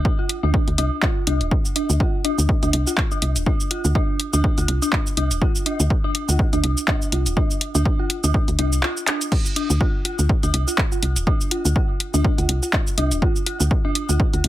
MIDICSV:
0, 0, Header, 1, 4, 480
1, 0, Start_track
1, 0, Key_signature, -1, "minor"
1, 0, Tempo, 487805
1, 1489, Time_signature, 4, 2, 24, 8
1, 14248, End_track
2, 0, Start_track
2, 0, Title_t, "Synth bell"
2, 0, Program_c, 0, 98
2, 185, Note_on_c, 0, 65, 73
2, 222, Note_off_c, 0, 65, 0
2, 425, Note_on_c, 0, 62, 98
2, 462, Note_off_c, 0, 62, 0
2, 769, Note_on_c, 0, 62, 97
2, 798, Note_off_c, 0, 62, 0
2, 1010, Note_on_c, 0, 65, 78
2, 1057, Note_off_c, 0, 65, 0
2, 1249, Note_on_c, 0, 62, 97
2, 1297, Note_off_c, 0, 62, 0
2, 1730, Note_on_c, 0, 62, 97
2, 1758, Note_off_c, 0, 62, 0
2, 1969, Note_on_c, 0, 65, 80
2, 2017, Note_off_c, 0, 65, 0
2, 2209, Note_on_c, 0, 62, 105
2, 2257, Note_off_c, 0, 62, 0
2, 2585, Note_on_c, 0, 62, 93
2, 2607, Note_off_c, 0, 62, 0
2, 2825, Note_on_c, 0, 65, 74
2, 2862, Note_off_c, 0, 65, 0
2, 3064, Note_on_c, 0, 62, 96
2, 3101, Note_off_c, 0, 62, 0
2, 3409, Note_on_c, 0, 62, 97
2, 3438, Note_off_c, 0, 62, 0
2, 3649, Note_on_c, 0, 65, 76
2, 3697, Note_off_c, 0, 65, 0
2, 3888, Note_on_c, 0, 62, 101
2, 3937, Note_off_c, 0, 62, 0
2, 4264, Note_on_c, 0, 62, 100
2, 4286, Note_off_c, 0, 62, 0
2, 4505, Note_on_c, 0, 65, 75
2, 4542, Note_off_c, 0, 65, 0
2, 4744, Note_on_c, 0, 62, 99
2, 4781, Note_off_c, 0, 62, 0
2, 5088, Note_on_c, 0, 62, 101
2, 5118, Note_off_c, 0, 62, 0
2, 5329, Note_on_c, 0, 65, 82
2, 5377, Note_off_c, 0, 65, 0
2, 5570, Note_on_c, 0, 62, 99
2, 5617, Note_off_c, 0, 62, 0
2, 5945, Note_on_c, 0, 62, 101
2, 5967, Note_off_c, 0, 62, 0
2, 6184, Note_on_c, 0, 65, 76
2, 6221, Note_off_c, 0, 65, 0
2, 6424, Note_on_c, 0, 62, 99
2, 6461, Note_off_c, 0, 62, 0
2, 6769, Note_on_c, 0, 62, 101
2, 6798, Note_off_c, 0, 62, 0
2, 7008, Note_on_c, 0, 65, 72
2, 7057, Note_off_c, 0, 65, 0
2, 7249, Note_on_c, 0, 62, 99
2, 7297, Note_off_c, 0, 62, 0
2, 7625, Note_on_c, 0, 62, 99
2, 7647, Note_off_c, 0, 62, 0
2, 7866, Note_on_c, 0, 65, 77
2, 7902, Note_off_c, 0, 65, 0
2, 8105, Note_on_c, 0, 62, 96
2, 8142, Note_off_c, 0, 62, 0
2, 8449, Note_on_c, 0, 62, 99
2, 8478, Note_off_c, 0, 62, 0
2, 8689, Note_on_c, 0, 65, 84
2, 8737, Note_off_c, 0, 65, 0
2, 8929, Note_on_c, 0, 62, 97
2, 8977, Note_off_c, 0, 62, 0
2, 9409, Note_on_c, 0, 62, 101
2, 9438, Note_off_c, 0, 62, 0
2, 9649, Note_on_c, 0, 65, 80
2, 9697, Note_off_c, 0, 65, 0
2, 9889, Note_on_c, 0, 65, 77
2, 9937, Note_off_c, 0, 65, 0
2, 10264, Note_on_c, 0, 62, 95
2, 10287, Note_off_c, 0, 62, 0
2, 10504, Note_on_c, 0, 65, 73
2, 10541, Note_off_c, 0, 65, 0
2, 10744, Note_on_c, 0, 65, 74
2, 10781, Note_off_c, 0, 65, 0
2, 11089, Note_on_c, 0, 62, 99
2, 11118, Note_off_c, 0, 62, 0
2, 11329, Note_on_c, 0, 65, 76
2, 11377, Note_off_c, 0, 65, 0
2, 11568, Note_on_c, 0, 65, 85
2, 11617, Note_off_c, 0, 65, 0
2, 11944, Note_on_c, 0, 62, 101
2, 11967, Note_off_c, 0, 62, 0
2, 12185, Note_on_c, 0, 65, 74
2, 12222, Note_off_c, 0, 65, 0
2, 12424, Note_on_c, 0, 65, 78
2, 12461, Note_off_c, 0, 65, 0
2, 12768, Note_on_c, 0, 62, 102
2, 12797, Note_off_c, 0, 62, 0
2, 13009, Note_on_c, 0, 65, 79
2, 13057, Note_off_c, 0, 65, 0
2, 13249, Note_on_c, 0, 65, 77
2, 13297, Note_off_c, 0, 65, 0
2, 13625, Note_on_c, 0, 62, 101
2, 13647, Note_off_c, 0, 62, 0
2, 13865, Note_on_c, 0, 65, 75
2, 13902, Note_off_c, 0, 65, 0
2, 14105, Note_on_c, 0, 65, 72
2, 14142, Note_off_c, 0, 65, 0
2, 14248, End_track
3, 0, Start_track
3, 0, Title_t, "FM bass"
3, 0, Program_c, 1, 39
3, 427, Note_on_c, 1, 38, 95
3, 512, Note_off_c, 1, 38, 0
3, 665, Note_on_c, 1, 38, 92
3, 752, Note_off_c, 1, 38, 0
3, 769, Note_on_c, 1, 36, 96
3, 882, Note_off_c, 1, 36, 0
3, 1250, Note_on_c, 1, 36, 87
3, 1386, Note_on_c, 1, 26, 85
3, 1400, Note_off_c, 1, 36, 0
3, 1472, Note_off_c, 1, 26, 0
3, 1866, Note_on_c, 1, 38, 99
3, 1952, Note_off_c, 1, 38, 0
3, 2345, Note_on_c, 1, 38, 94
3, 2431, Note_off_c, 1, 38, 0
3, 2585, Note_on_c, 1, 38, 97
3, 2672, Note_off_c, 1, 38, 0
3, 2690, Note_on_c, 1, 36, 98
3, 2802, Note_off_c, 1, 36, 0
3, 3169, Note_on_c, 1, 36, 86
3, 3305, Note_on_c, 1, 26, 83
3, 3320, Note_off_c, 1, 36, 0
3, 3391, Note_off_c, 1, 26, 0
3, 3785, Note_on_c, 1, 38, 103
3, 3871, Note_off_c, 1, 38, 0
3, 4264, Note_on_c, 1, 38, 96
3, 4351, Note_off_c, 1, 38, 0
3, 4504, Note_on_c, 1, 38, 96
3, 4591, Note_off_c, 1, 38, 0
3, 4609, Note_on_c, 1, 36, 95
3, 4722, Note_off_c, 1, 36, 0
3, 5089, Note_on_c, 1, 36, 83
3, 5225, Note_on_c, 1, 26, 83
3, 5240, Note_off_c, 1, 36, 0
3, 5311, Note_off_c, 1, 26, 0
3, 5705, Note_on_c, 1, 38, 103
3, 5791, Note_off_c, 1, 38, 0
3, 6186, Note_on_c, 1, 38, 96
3, 6272, Note_off_c, 1, 38, 0
3, 6426, Note_on_c, 1, 38, 94
3, 6512, Note_off_c, 1, 38, 0
3, 6529, Note_on_c, 1, 36, 94
3, 6642, Note_off_c, 1, 36, 0
3, 7010, Note_on_c, 1, 36, 87
3, 7146, Note_on_c, 1, 26, 88
3, 7161, Note_off_c, 1, 36, 0
3, 7232, Note_off_c, 1, 26, 0
3, 7625, Note_on_c, 1, 38, 103
3, 7711, Note_off_c, 1, 38, 0
3, 8106, Note_on_c, 1, 38, 93
3, 8192, Note_off_c, 1, 38, 0
3, 8346, Note_on_c, 1, 38, 96
3, 8432, Note_off_c, 1, 38, 0
3, 8450, Note_on_c, 1, 36, 94
3, 8690, Note_off_c, 1, 36, 0
3, 9545, Note_on_c, 1, 38, 102
3, 9631, Note_off_c, 1, 38, 0
3, 10026, Note_on_c, 1, 38, 95
3, 10112, Note_off_c, 1, 38, 0
3, 10265, Note_on_c, 1, 38, 96
3, 10351, Note_off_c, 1, 38, 0
3, 10368, Note_on_c, 1, 36, 97
3, 10481, Note_off_c, 1, 36, 0
3, 10849, Note_on_c, 1, 36, 85
3, 10985, Note_on_c, 1, 26, 86
3, 11000, Note_off_c, 1, 36, 0
3, 11071, Note_off_c, 1, 26, 0
3, 11465, Note_on_c, 1, 38, 98
3, 11551, Note_off_c, 1, 38, 0
3, 11945, Note_on_c, 1, 38, 94
3, 12031, Note_off_c, 1, 38, 0
3, 12185, Note_on_c, 1, 38, 99
3, 12271, Note_off_c, 1, 38, 0
3, 12289, Note_on_c, 1, 36, 96
3, 12402, Note_off_c, 1, 36, 0
3, 12769, Note_on_c, 1, 36, 90
3, 12905, Note_on_c, 1, 26, 85
3, 12920, Note_off_c, 1, 36, 0
3, 12992, Note_off_c, 1, 26, 0
3, 13385, Note_on_c, 1, 38, 105
3, 13471, Note_off_c, 1, 38, 0
3, 13866, Note_on_c, 1, 38, 93
3, 13952, Note_off_c, 1, 38, 0
3, 14105, Note_on_c, 1, 38, 93
3, 14191, Note_off_c, 1, 38, 0
3, 14210, Note_on_c, 1, 36, 95
3, 14248, Note_off_c, 1, 36, 0
3, 14248, End_track
4, 0, Start_track
4, 0, Title_t, "Drums"
4, 49, Note_on_c, 9, 36, 121
4, 148, Note_off_c, 9, 36, 0
4, 289, Note_on_c, 9, 42, 94
4, 388, Note_off_c, 9, 42, 0
4, 529, Note_on_c, 9, 36, 123
4, 628, Note_off_c, 9, 36, 0
4, 665, Note_on_c, 9, 42, 37
4, 764, Note_off_c, 9, 42, 0
4, 769, Note_on_c, 9, 42, 90
4, 868, Note_off_c, 9, 42, 0
4, 1009, Note_on_c, 9, 39, 103
4, 1010, Note_on_c, 9, 36, 127
4, 1107, Note_off_c, 9, 39, 0
4, 1108, Note_off_c, 9, 36, 0
4, 1250, Note_on_c, 9, 42, 95
4, 1348, Note_off_c, 9, 42, 0
4, 1385, Note_on_c, 9, 42, 38
4, 1484, Note_off_c, 9, 42, 0
4, 1490, Note_on_c, 9, 36, 121
4, 1588, Note_off_c, 9, 36, 0
4, 1625, Note_on_c, 9, 69, 41
4, 1724, Note_off_c, 9, 69, 0
4, 1729, Note_on_c, 9, 42, 92
4, 1828, Note_off_c, 9, 42, 0
4, 1866, Note_on_c, 9, 69, 50
4, 1964, Note_off_c, 9, 69, 0
4, 1970, Note_on_c, 9, 36, 113
4, 2068, Note_off_c, 9, 36, 0
4, 2210, Note_on_c, 9, 42, 85
4, 2308, Note_off_c, 9, 42, 0
4, 2346, Note_on_c, 9, 69, 48
4, 2444, Note_off_c, 9, 69, 0
4, 2449, Note_on_c, 9, 36, 118
4, 2548, Note_off_c, 9, 36, 0
4, 2585, Note_on_c, 9, 42, 36
4, 2585, Note_on_c, 9, 69, 26
4, 2684, Note_off_c, 9, 42, 0
4, 2684, Note_off_c, 9, 69, 0
4, 2689, Note_on_c, 9, 42, 91
4, 2788, Note_off_c, 9, 42, 0
4, 2825, Note_on_c, 9, 69, 51
4, 2923, Note_off_c, 9, 69, 0
4, 2929, Note_on_c, 9, 36, 122
4, 2929, Note_on_c, 9, 39, 97
4, 3027, Note_off_c, 9, 36, 0
4, 3027, Note_off_c, 9, 39, 0
4, 3064, Note_on_c, 9, 69, 40
4, 3163, Note_off_c, 9, 69, 0
4, 3168, Note_on_c, 9, 42, 95
4, 3267, Note_off_c, 9, 42, 0
4, 3305, Note_on_c, 9, 42, 36
4, 3305, Note_on_c, 9, 69, 50
4, 3403, Note_off_c, 9, 42, 0
4, 3403, Note_off_c, 9, 69, 0
4, 3409, Note_on_c, 9, 36, 114
4, 3507, Note_off_c, 9, 36, 0
4, 3545, Note_on_c, 9, 69, 41
4, 3643, Note_off_c, 9, 69, 0
4, 3649, Note_on_c, 9, 42, 94
4, 3747, Note_off_c, 9, 42, 0
4, 3784, Note_on_c, 9, 69, 49
4, 3883, Note_off_c, 9, 69, 0
4, 3889, Note_on_c, 9, 36, 116
4, 3987, Note_off_c, 9, 36, 0
4, 4129, Note_on_c, 9, 42, 83
4, 4227, Note_off_c, 9, 42, 0
4, 4264, Note_on_c, 9, 69, 52
4, 4363, Note_off_c, 9, 69, 0
4, 4369, Note_on_c, 9, 36, 113
4, 4467, Note_off_c, 9, 36, 0
4, 4504, Note_on_c, 9, 42, 34
4, 4504, Note_on_c, 9, 69, 29
4, 4603, Note_off_c, 9, 42, 0
4, 4603, Note_off_c, 9, 69, 0
4, 4609, Note_on_c, 9, 42, 88
4, 4707, Note_off_c, 9, 42, 0
4, 4745, Note_on_c, 9, 69, 52
4, 4843, Note_off_c, 9, 69, 0
4, 4848, Note_on_c, 9, 39, 99
4, 4849, Note_on_c, 9, 36, 110
4, 4947, Note_off_c, 9, 36, 0
4, 4947, Note_off_c, 9, 39, 0
4, 4985, Note_on_c, 9, 69, 41
4, 5083, Note_off_c, 9, 69, 0
4, 5089, Note_on_c, 9, 42, 87
4, 5187, Note_off_c, 9, 42, 0
4, 5225, Note_on_c, 9, 42, 35
4, 5225, Note_on_c, 9, 69, 53
4, 5323, Note_off_c, 9, 42, 0
4, 5323, Note_off_c, 9, 69, 0
4, 5329, Note_on_c, 9, 36, 114
4, 5427, Note_off_c, 9, 36, 0
4, 5465, Note_on_c, 9, 69, 44
4, 5563, Note_off_c, 9, 69, 0
4, 5570, Note_on_c, 9, 42, 89
4, 5668, Note_off_c, 9, 42, 0
4, 5705, Note_on_c, 9, 69, 54
4, 5804, Note_off_c, 9, 69, 0
4, 5809, Note_on_c, 9, 36, 116
4, 5907, Note_off_c, 9, 36, 0
4, 6049, Note_on_c, 9, 42, 85
4, 6148, Note_off_c, 9, 42, 0
4, 6185, Note_on_c, 9, 69, 55
4, 6284, Note_off_c, 9, 69, 0
4, 6289, Note_on_c, 9, 36, 111
4, 6388, Note_off_c, 9, 36, 0
4, 6426, Note_on_c, 9, 42, 35
4, 6426, Note_on_c, 9, 69, 29
4, 6524, Note_off_c, 9, 42, 0
4, 6524, Note_off_c, 9, 69, 0
4, 6530, Note_on_c, 9, 42, 87
4, 6628, Note_off_c, 9, 42, 0
4, 6665, Note_on_c, 9, 69, 53
4, 6764, Note_off_c, 9, 69, 0
4, 6769, Note_on_c, 9, 36, 113
4, 6770, Note_on_c, 9, 39, 101
4, 6868, Note_off_c, 9, 36, 0
4, 6868, Note_off_c, 9, 39, 0
4, 6905, Note_on_c, 9, 69, 43
4, 7004, Note_off_c, 9, 69, 0
4, 7009, Note_on_c, 9, 42, 87
4, 7108, Note_off_c, 9, 42, 0
4, 7145, Note_on_c, 9, 42, 35
4, 7145, Note_on_c, 9, 69, 54
4, 7244, Note_off_c, 9, 42, 0
4, 7244, Note_off_c, 9, 69, 0
4, 7250, Note_on_c, 9, 36, 120
4, 7348, Note_off_c, 9, 36, 0
4, 7385, Note_on_c, 9, 69, 43
4, 7484, Note_off_c, 9, 69, 0
4, 7489, Note_on_c, 9, 42, 89
4, 7588, Note_off_c, 9, 42, 0
4, 7625, Note_on_c, 9, 69, 55
4, 7723, Note_off_c, 9, 69, 0
4, 7729, Note_on_c, 9, 36, 117
4, 7828, Note_off_c, 9, 36, 0
4, 7969, Note_on_c, 9, 42, 82
4, 8068, Note_off_c, 9, 42, 0
4, 8105, Note_on_c, 9, 69, 55
4, 8204, Note_off_c, 9, 69, 0
4, 8209, Note_on_c, 9, 36, 115
4, 8308, Note_off_c, 9, 36, 0
4, 8345, Note_on_c, 9, 42, 34
4, 8345, Note_on_c, 9, 69, 30
4, 8444, Note_off_c, 9, 42, 0
4, 8444, Note_off_c, 9, 69, 0
4, 8449, Note_on_c, 9, 42, 90
4, 8548, Note_off_c, 9, 42, 0
4, 8586, Note_on_c, 9, 69, 55
4, 8684, Note_off_c, 9, 69, 0
4, 8690, Note_on_c, 9, 39, 102
4, 8788, Note_off_c, 9, 39, 0
4, 8826, Note_on_c, 9, 69, 43
4, 8924, Note_off_c, 9, 69, 0
4, 8930, Note_on_c, 9, 39, 88
4, 8930, Note_on_c, 9, 42, 91
4, 9028, Note_off_c, 9, 39, 0
4, 9028, Note_off_c, 9, 42, 0
4, 9065, Note_on_c, 9, 42, 36
4, 9065, Note_on_c, 9, 69, 56
4, 9164, Note_off_c, 9, 42, 0
4, 9164, Note_off_c, 9, 69, 0
4, 9169, Note_on_c, 9, 36, 121
4, 9169, Note_on_c, 9, 49, 74
4, 9268, Note_off_c, 9, 36, 0
4, 9268, Note_off_c, 9, 49, 0
4, 9305, Note_on_c, 9, 69, 45
4, 9404, Note_off_c, 9, 69, 0
4, 9409, Note_on_c, 9, 42, 94
4, 9508, Note_off_c, 9, 42, 0
4, 9546, Note_on_c, 9, 69, 53
4, 9644, Note_off_c, 9, 69, 0
4, 9649, Note_on_c, 9, 36, 118
4, 9748, Note_off_c, 9, 36, 0
4, 9889, Note_on_c, 9, 42, 88
4, 9988, Note_off_c, 9, 42, 0
4, 10025, Note_on_c, 9, 69, 54
4, 10124, Note_off_c, 9, 69, 0
4, 10129, Note_on_c, 9, 36, 117
4, 10228, Note_off_c, 9, 36, 0
4, 10266, Note_on_c, 9, 42, 36
4, 10266, Note_on_c, 9, 69, 30
4, 10364, Note_off_c, 9, 42, 0
4, 10364, Note_off_c, 9, 69, 0
4, 10370, Note_on_c, 9, 42, 90
4, 10468, Note_off_c, 9, 42, 0
4, 10505, Note_on_c, 9, 69, 52
4, 10604, Note_off_c, 9, 69, 0
4, 10609, Note_on_c, 9, 36, 122
4, 10609, Note_on_c, 9, 39, 111
4, 10707, Note_off_c, 9, 36, 0
4, 10708, Note_off_c, 9, 39, 0
4, 10745, Note_on_c, 9, 69, 44
4, 10844, Note_off_c, 9, 69, 0
4, 10849, Note_on_c, 9, 42, 95
4, 10947, Note_off_c, 9, 42, 0
4, 10985, Note_on_c, 9, 42, 37
4, 10985, Note_on_c, 9, 69, 57
4, 11083, Note_off_c, 9, 42, 0
4, 11083, Note_off_c, 9, 69, 0
4, 11089, Note_on_c, 9, 36, 127
4, 11188, Note_off_c, 9, 36, 0
4, 11225, Note_on_c, 9, 69, 43
4, 11324, Note_off_c, 9, 69, 0
4, 11329, Note_on_c, 9, 42, 98
4, 11427, Note_off_c, 9, 42, 0
4, 11465, Note_on_c, 9, 69, 55
4, 11564, Note_off_c, 9, 69, 0
4, 11569, Note_on_c, 9, 36, 121
4, 11668, Note_off_c, 9, 36, 0
4, 11809, Note_on_c, 9, 42, 91
4, 11908, Note_off_c, 9, 42, 0
4, 11945, Note_on_c, 9, 69, 54
4, 12044, Note_off_c, 9, 69, 0
4, 12049, Note_on_c, 9, 36, 127
4, 12148, Note_off_c, 9, 36, 0
4, 12186, Note_on_c, 9, 42, 37
4, 12186, Note_on_c, 9, 69, 28
4, 12284, Note_off_c, 9, 42, 0
4, 12284, Note_off_c, 9, 69, 0
4, 12289, Note_on_c, 9, 42, 96
4, 12388, Note_off_c, 9, 42, 0
4, 12425, Note_on_c, 9, 69, 54
4, 12523, Note_off_c, 9, 69, 0
4, 12529, Note_on_c, 9, 36, 126
4, 12529, Note_on_c, 9, 39, 111
4, 12627, Note_off_c, 9, 39, 0
4, 12628, Note_off_c, 9, 36, 0
4, 12665, Note_on_c, 9, 69, 42
4, 12763, Note_off_c, 9, 69, 0
4, 12769, Note_on_c, 9, 42, 96
4, 12867, Note_off_c, 9, 42, 0
4, 12905, Note_on_c, 9, 42, 38
4, 12905, Note_on_c, 9, 69, 53
4, 13003, Note_off_c, 9, 42, 0
4, 13003, Note_off_c, 9, 69, 0
4, 13009, Note_on_c, 9, 36, 127
4, 13108, Note_off_c, 9, 36, 0
4, 13145, Note_on_c, 9, 69, 41
4, 13244, Note_off_c, 9, 69, 0
4, 13249, Note_on_c, 9, 42, 95
4, 13347, Note_off_c, 9, 42, 0
4, 13385, Note_on_c, 9, 69, 52
4, 13483, Note_off_c, 9, 69, 0
4, 13489, Note_on_c, 9, 36, 122
4, 13588, Note_off_c, 9, 36, 0
4, 13730, Note_on_c, 9, 42, 92
4, 13828, Note_off_c, 9, 42, 0
4, 13866, Note_on_c, 9, 69, 53
4, 13964, Note_off_c, 9, 69, 0
4, 13970, Note_on_c, 9, 36, 127
4, 14068, Note_off_c, 9, 36, 0
4, 14106, Note_on_c, 9, 42, 38
4, 14106, Note_on_c, 9, 69, 28
4, 14204, Note_off_c, 9, 42, 0
4, 14204, Note_off_c, 9, 69, 0
4, 14210, Note_on_c, 9, 42, 97
4, 14248, Note_off_c, 9, 42, 0
4, 14248, End_track
0, 0, End_of_file